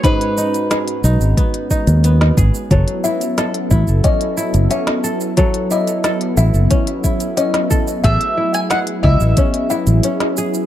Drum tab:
HH |xx-xxx--xx-xx-x-|xx-xxx--xx-xxx--|xx-xxx--xx-xxx--|xx-xxx--xx-xxx--|
SH |x-xxx-xxx-xxx-xx|x-xxx-xxx-xxx-xx|x-xxx-xxx-xxx-xx|x--xx--xx-xxx-xx|
SD |----o--------o--|----o--------o--|----o--------o--|----o--------o--|
BD |o-------o-o---o-|o-----o-o-------|o-------o-o---o-|o-----o-o-------|